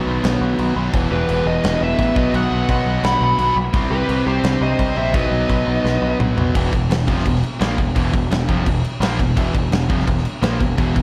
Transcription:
Already playing: B2 D#3 F#3 B3 D#4
0.07 B1
0.24 B1, snare, crash
0.41 B1
0.59 B1, crash
0.75 B1 B2 F#3 B3
0.93 E1 E2 B2 E3 G3 B3 E4, kick, crash
1.11 E1 G4 B4
1.29 E1, crash
1.46 E1 B4 D#5
1.64 E1, snare, crash
1.74 B4 D#5
1.80 E1 B4 E5
1.99 A1, kick, crash
2.15 B1 B2 D#3 F#3 B3 D#4 B4 D#5, kick
2.34 B1 D#5 F#5, crash
2.51 B1
2.69 B1 D#5 F#5, kick, crash
2.86 B1
3.03 B1 F#5 B5, snare, crash
3.21 B1 F#5 B5
3.38 B1 B2 F#3 B3, crash
3.56 B1
3.73 C2 C3 G3 C4 E4, kick, crash
3.90 C2 G4 B4
4.09 C2, crash
4.26 C2 G4 C5
4.44 C2, snare, crash
4.61 C2 C5 D#5
4.79 C2, kick, crash
4.96 A#1 C3 G3 C4 C5 E5
5.13 B1 B2 F#3 B3 D#4 B4 D#5, kick, crash
5.32 B1
5.49 B1, kick, crash
5.66 B1
5.84 B1, snare
6.02 B1
6.20 B1, mid tom
6.36 B1 B2 F#3 B3, floor tom
6.54 E1 E2 B2 E3, kick, crash
6.72 E1 E2 B2, kick, crash
6.89 E1 E2 B2, snare, crash
7.07 F1 F2 C3 F3, kick, crash
7.18 snare
7.25 E1 E2 B2, kick, crash
7.36 snare
7.43 crash
7.61 A#1 A#2 F3 A#3, snare, crash
7.78 E1 E2 B2, kick, crash
7.95 E1 E2 B2 E3, kick, crash
8.13 E1 E2 B2, kick, crash
8.30 E1 E2 B2, snare, crash
8.49 F1 F2 C3 F3, kick, crash
8.66 E1 E2 B2, kick, crash
8.85 crash
9.00 A#1 A#2 F3 A#3, snare, crash
9.19 E1 E2 B2, kick, crash
9.36 E1 E2 B2 E3, kick, crash
9.54 E1 E2 B2, kick, crash
9.71 E1 E2 B2, snare, crash
9.89 F1 F2 C3 F3, kick, crash
10.00 snare
10.07 E1 E2 B2, kick, crash
10.18 snare
10.25 crash
10.42 A#1 A#2 F3 A#3, snare, crash
10.60 E1 E2 B2, kick, crash
10.78 E1 E2 B2 E3, kick, crash
10.96 E1 E2 B2, kick, crash

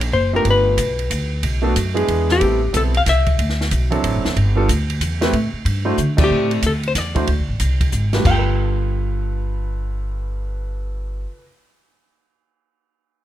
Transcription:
Already playing: A#1
0.01 ride
0.12 F#1 C5, kick
0.33 A3 B3 D4 F4 G4 A#4
0.45 G1, kick, ride
0.50 B4
0.77 B1, kick, hi-hat pedal, ride
0.99 ride
1.10 D2, kick, hi-hat pedal, ride
1.43 B1, kick, ride
1.62 A3 B3 D4 F#4 A4
1.76 F#2, kick, hi-hat pedal, ride
1.94 G#3 B3 D4 E4 G#4, ride
2.08 E2, kick, ride
2.29 G4, snare
2.40 A1 G3 B3 C4 E4 A4, kick, ride
2.73 B1 G3 B3 C4 E4 A4, kick, hi-hat pedal, ride
2.94 F5, ride
3.06 C2 E5, kick, snare, hi-hat pedal, ride
3.26 kick, ride
3.39 D2, kick, ride
3.50 snare
3.61 snare
3.71 B1, kick, hi-hat pedal, ride
3.90 F#3 C4 D4 E4 A4, ride
4.04 A1, kick, ride
4.14 F#1
4.25 D1, snare
4.36 G1, kick, ride
4.55 G3 B3 D4 F4 A4
4.69 D2, kick, hi-hat pedal, ride
4.90 ride
5.01 E2, kick, hi-hat pedal, ride
5.21 A3 C4 E4 G4 B4, snare, ride
5.33 A2, kick, ride
5.53 muted upright bass stroke
5.65 G2, kick, ride
5.85 A3 D4 E4 F#4 C5
5.98 D3, hi-hat pedal
6.17 A3 C4 E4 G4 D5, kick, crash
6.24 G4
6.30 A2
6.51 ride
6.62 D2, kick, hi-hat pedal, ride
6.67 A4
6.83 ride
6.88 C5
6.95 E2 D5, kick, snare, hi-hat pedal, ride
7.15 A3 D4 E4 F#4 C5, kick, ride
7.27 D2, kick, ride
7.38 C2
7.48 A1
7.60 C2, kick, hi-hat pedal, ride
7.81 kick, ride
7.92 G#1, kick, hi-hat pedal
8.13 G2 A3 D4 F4 G4 B4, snare, ride
8.19 G3
8.25 G1 F4 G5, kick, china
8.32 A4
8.38 B4

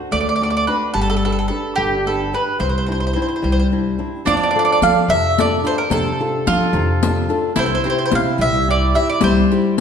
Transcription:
Already playing: C4 D4 F#4
0.11 D2 A3 D5
0.20 D5
0.29 D5
0.36 D5
0.41 C4 D4 F#4 D5
0.50 D5
0.57 D5
0.67 C4 D4 F#4 B4
0.94 G1 G3 A4
1.01 A4
1.10 A4
1.17 A4
1.24 D4 G4 A4 B4
1.32 A4
1.39 A4
1.48 D4 G4 A4 B4
1.76 G1 D3 G4
2.06 D4 G4 A4 B4
2.33 D4 G4 B4
2.59 C2 C3 C5
2.69 C5
2.78 C5
2.86 C4 D4 E4 C5
2.92 C5
3.00 C5
3.07 C5
3.13 C4 D4 E4 C5
3.22 C5
3.28 C5
3.36 C5
3.42 C2 G3 C5
3.52 C5
3.59 C5
3.72 C4 D4 E4
3.98 C4 D4 E4
4.25 F2 F3 D4 D5, riq
4.37 D5
4.43 D5
4.51 D5
4.55 D4 F4 A4
4.59 D5
4.65 D5
4.72 D5
4.81 F3 D4 F4 A4 F5, riq
5.08 F2 C3 E5, riq
5.38 D4 F4 A4 D5, riq
5.63 D4 F4 A4 C5, riq
5.78 A#4
5.90 F2 C3 A4, riq
6.20 D4 F4 A4
6.46 F3 D4 F4 A4, riq
6.73 F2 C3, riq
7.02 D4 F4 A4, riq
7.29 D4 F4 A4, riq
7.56 C2 C3 E4 C5, riq
7.66 C5
7.75 C5
7.84 C4 E4 G4 C5
7.90 C5
7.99 C5
8.06 C5
8.11 C3 C4 E4 G4 F5, riq
8.38 C2 G3 E5, riq
8.68 C4 E4 G4 D5
8.95 C4 E4 G4 E5, riq
9.09 D5
9.21 C2 G3 C5, riq
9.51 C4 E4 G4, riq

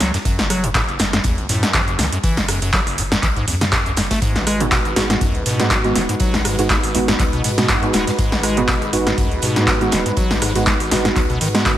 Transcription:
0.00 C#2 F#3, snare, closed hi-hat, open hi-hat
0.14 F#2, snare, closed hi-hat
0.25 F#1 F#2, kick, closed hi-hat
0.38 F#1, snare, closed hi-hat
0.50 F#3, cross-stick, closed hi-hat, open hi-hat
0.64 F#2, closed hi-hat
0.75 A2, kick, snare, clap, closed hi-hat
0.88 F#1, closed hi-hat
0.99 F#1 F#2, snare, closed hi-hat, open hi-hat
1.13 F#2, cross-stick, snare, closed hi-hat
1.24 B1 E2, kick, closed hi-hat
1.38 F#1, closed hi-hat
1.49 F#2 A2, snare, closed hi-hat, open hi-hat
1.63 F#2, snare, closed hi-hat
1.73 F#3, kick, cross-stick, snare, clap, closed hi-hat
1.88 F#1, closed hi-hat
1.99 C#2 F#3, snare, closed hi-hat, open hi-hat
2.12 F#2, closed hi-hat
2.23 F#1 E3, kick, closed hi-hat
2.37 F#1, snare, closed hi-hat
2.48 F#2, cross-stick, closed hi-hat, open hi-hat
2.62 F#2, closed hi-hat
2.73 F#3, kick, snare, clap, closed hi-hat
2.87 F#1, open hi-hat
2.98 F#1 C#3, closed hi-hat, open hi-hat
3.12 F#2, cross-stick, snare, closed hi-hat
3.23 B1 E3, kick, clap, closed hi-hat
3.36 G#2, closed hi-hat
3.48 E2 F#2, closed hi-hat, open hi-hat
3.61 C#3, snare, closed hi-hat
3.72 A2, kick, cross-stick, snare, clap, closed hi-hat
3.86 C#2 F#2, closed hi-hat
3.97 F#1 F#2, snare, closed hi-hat, open hi-hat
4.11 A3, kick, snare, closed hi-hat
4.22 G#1 G#2 G#3 D#4 F#4 B4, kick, closed hi-hat
4.35 G#1, snare, closed hi-hat
4.47 G#3, cross-stick, closed hi-hat, open hi-hat
4.60 G#2 G#3 B3 D#4 F#4, closed hi-hat
4.72 B2, kick, snare, clap, closed hi-hat
4.85 G#1, closed hi-hat
4.96 G#1 G#2 G#3 B3 D#4 F#4, snare, closed hi-hat, open hi-hat
5.10 G#2, cross-stick, snare, closed hi-hat
5.21 C#2 F#2, kick, closed hi-hat
5.35 G#1, closed hi-hat
5.46 G#2 B2, snare, closed hi-hat, open hi-hat
5.60 G#2 G#3 B3 D#4 F#4, snare, closed hi-hat
5.70 G#3, kick, cross-stick, snare, clap, closed hi-hat
5.84 G#1 G#3 B3 D#4 F#4, closed hi-hat
5.95 D#1 G#3, snare, closed hi-hat, open hi-hat
6.09 G#2, closed hi-hat
6.20 G#1 F#3, kick, closed hi-hat
6.34 G#1, snare, closed hi-hat
6.45 G#2, cross-stick, closed hi-hat, open hi-hat
6.58 G#2 G#3 B3 D#4 F#4, closed hi-hat
6.70 G#3, kick, snare, clap, closed hi-hat
6.83 G#1, open hi-hat
6.95 G#1 D#3 G#3 B3 D#4 F#4, closed hi-hat, open hi-hat
7.08 G#2, cross-stick, snare, closed hi-hat
7.19 C#2 F#3, kick, clap, closed hi-hat
7.33 B2, closed hi-hat
7.44 G#2 B2, closed hi-hat, open hi-hat
7.58 B2 G#3 B3 D#4 F#4, snare, closed hi-hat
7.69 F#2, kick, cross-stick, snare, clap, closed hi-hat
7.83 B2 G#3 B3 D#4 F#4, closed hi-hat
7.93 D#1 G#3, snare, closed hi-hat, open hi-hat
8.07 G#2, snare, closed hi-hat
8.19 G#1 G#2, kick, closed hi-hat
8.32 G#1, snare, closed hi-hat
8.43 G#3, cross-stick, closed hi-hat, open hi-hat
8.57 G#2 G#3 B3 D#4 F#4, closed hi-hat
8.68 B2, kick, snare, clap, closed hi-hat
8.82 G#1, closed hi-hat
8.93 G#1 G#2 G#3 B3 D#4 F#4, closed hi-hat, open hi-hat
9.07 G#2, cross-stick, snare, closed hi-hat
9.18 C#2 F#2, kick, closed hi-hat
9.31 G#1, closed hi-hat
9.42 G#2 B2, snare, closed hi-hat, open hi-hat
9.56 G#2 G#3 B3 D#4 F#4, snare, closed hi-hat
9.67 G#3, kick, cross-stick, snare, clap, closed hi-hat
9.81 G#1 G#3 B3 D#4 F#4, closed hi-hat
9.92 D#1 G#3, snare, closed hi-hat, open hi-hat
10.06 G#2, closed hi-hat
10.17 G#1 F#3, kick, closed hi-hat
10.31 G#1, snare, closed hi-hat
10.42 G#2, cross-stick, closed hi-hat, open hi-hat
10.55 G#2 G#3 B3 D#4 F#4, closed hi-hat
10.66 G#3, kick, snare, clap, closed hi-hat
10.80 G#1, open hi-hat
10.91 G#1 D#3 G#3 B3 D#4 F#4, snare, closed hi-hat, open hi-hat
11.05 G#2, cross-stick, snare, closed hi-hat
11.16 C#2 F#3, kick, clap, closed hi-hat
11.30 B2, closed hi-hat
11.41 G#2 D#3, closed hi-hat, open hi-hat
11.55 G#3 B3 D#4 F#4, snare, closed hi-hat
11.66 C#3, kick, cross-stick, snare, clap, closed hi-hat

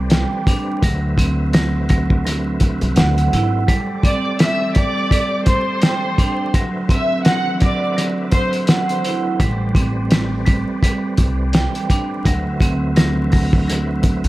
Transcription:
Already playing: C2 G3 A3 C4 G4 B4 C5 D5
0.10 G5, snare, closed hi-hat
0.47 D4, kick, closed hi-hat
0.82 D2 D3 F#3 F#4 E5, kick, closed hi-hat
1.18 C4, kick, closed hi-hat
1.53 F#3, snare, closed hi-hat
1.89 F#3, kick, closed hi-hat
2.10 kick
2.25 F#3, snare, closed hi-hat
2.60 kick, closed hi-hat
2.81 C2, closed hi-hat
2.96 D2 F#5, snare, closed hi-hat
3.18 closed hi-hat
3.33 G#1 E4, closed hi-hat
3.67 G3 A3 G4 A4 C5 D5, kick, closed hi-hat
4.03 C4 D5 D6, kick, closed hi-hat
4.39 G3 E5 E6, snare, closed hi-hat
4.74 G3 D5 D6, kick, closed hi-hat
5.11 G3, kick, closed hi-hat
5.46 C5 C6, kick, closed hi-hat
5.82 G5, snare, closed hi-hat
6.18 D4, kick, closed hi-hat
6.54 D3 F#3 F#4 B4 E5, kick, closed hi-hat
6.89 C4 E5, kick, closed hi-hat
6.93 E6
7.25 F#3 F#5 F#6, snare, closed hi-hat
7.61 F#3 D5 D6, kick, closed hi-hat
7.97 F#3, snare, closed hi-hat
8.32 C5 C6, kick, closed hi-hat
8.53 closed hi-hat
8.67 F#5, snare, closed hi-hat
8.89 closed hi-hat
9.05 E4, closed hi-hat
9.40 A1 G3 G4 D5, kick, closed hi-hat
9.75 C4, kick, closed hi-hat
10.11 G3, snare, closed hi-hat
10.46 G3, kick, closed hi-hat
10.83 G3, kick, closed hi-hat
11.17 C2, kick, closed hi-hat
11.53 G5, snare, closed hi-hat
11.75 closed hi-hat
11.90 D4, kick, closed hi-hat
12.24 D2 D3 F#3 F#4 E5, kick, closed hi-hat
12.60 C4, kick, closed hi-hat
12.96 F#3, snare, closed hi-hat
13.32 F#3, kick, open hi-hat
13.53 kick
13.68 F#3, snare, closed hi-hat
14.03 kick, closed hi-hat
14.24 C2, closed hi-hat

